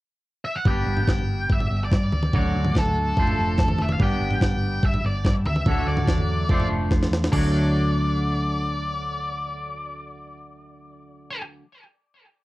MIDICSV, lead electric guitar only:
0, 0, Header, 1, 2, 480
1, 0, Start_track
1, 0, Key_signature, 2, "major"
1, 0, Tempo, 416667
1, 760, Time_signature, 4, 2, 24, 8
1, 14331, End_track
2, 0, Start_track
2, 0, Title_t, "Lead electric guitar"
2, 0, Program_c, 0, 29
2, 518, Note_on_c, 0, 76, 87
2, 639, Note_on_c, 0, 78, 79
2, 643, Note_off_c, 0, 76, 0
2, 752, Note_off_c, 0, 78, 0
2, 782, Note_on_c, 0, 79, 86
2, 1258, Note_off_c, 0, 79, 0
2, 1272, Note_on_c, 0, 79, 82
2, 1753, Note_on_c, 0, 76, 88
2, 1754, Note_off_c, 0, 79, 0
2, 2111, Note_off_c, 0, 76, 0
2, 2123, Note_on_c, 0, 74, 74
2, 2229, Note_off_c, 0, 74, 0
2, 2242, Note_on_c, 0, 74, 85
2, 2700, Note_off_c, 0, 74, 0
2, 2714, Note_on_c, 0, 74, 87
2, 3197, Note_off_c, 0, 74, 0
2, 3202, Note_on_c, 0, 69, 84
2, 4400, Note_on_c, 0, 76, 87
2, 4423, Note_off_c, 0, 69, 0
2, 4509, Note_off_c, 0, 76, 0
2, 4520, Note_on_c, 0, 77, 89
2, 4635, Note_off_c, 0, 77, 0
2, 4635, Note_on_c, 0, 79, 95
2, 5105, Note_off_c, 0, 79, 0
2, 5118, Note_on_c, 0, 79, 93
2, 5551, Note_off_c, 0, 79, 0
2, 5591, Note_on_c, 0, 76, 95
2, 5821, Note_off_c, 0, 76, 0
2, 5826, Note_on_c, 0, 74, 76
2, 6041, Note_off_c, 0, 74, 0
2, 6068, Note_on_c, 0, 74, 84
2, 6130, Note_off_c, 0, 74, 0
2, 6298, Note_on_c, 0, 76, 81
2, 6771, Note_off_c, 0, 76, 0
2, 6775, Note_on_c, 0, 74, 93
2, 7681, Note_off_c, 0, 74, 0
2, 8444, Note_on_c, 0, 74, 79
2, 13152, Note_off_c, 0, 74, 0
2, 14331, End_track
0, 0, End_of_file